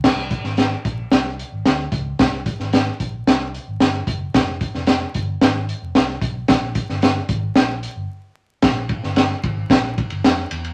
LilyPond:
<<
  \new Staff \with { instrumentName = "Fingered electric bass" } { \clef bass \time 4/4 \key aes \lydian \tempo 4 = 112 c,8. aes,,8. bes,,8 c,8. aes,,16 d,8 des,8 | c,8. aes,,8. bes,,8 c,8. aes,,16 g,,8 ges,,8 | f,,8. f,,8. g,,8 aes,,8. f,,16 c,8 ces,8 | bes,,8. g,,8. aes,,8 bes,,8. g,,16 r4 |
bes,,8. g,,8. aes,,8 bes,,8. g,,16 f,8 fes,8 | }
  \new DrumStaff \with { instrumentName = "Drums" } \drummode { \time 4/4 <cymc bd sn>8 <hh bd>16 sn16 <hh sn>8 <hh bd>8 <hh sn>8 hh8 <hh sn>8 <hh bd>8 | <hh bd sn>8 <hh bd>16 sn16 <hh sn>8 <hh bd>8 <hh sn>8 hh8 <hh sn>8 <hh bd>8 | <hh bd sn>8 <hh bd>16 sn16 <hh sn>8 <hh bd>8 <hh sn>8 hh8 <hh sn>8 <hh bd>8 | <hh bd sn>8 <hh bd>16 sn16 <hh sn>8 <hh bd>8 <hh sn>8 hh8 r4 |
<bd cymr sn>8 <bd cymr>16 sn16 <cymr sn>8 <bd cymr>8 <bd cymr sn>8 <bd cymr>16 cymr16 <cymr sn>8 cymr16 cymr16 | }
>>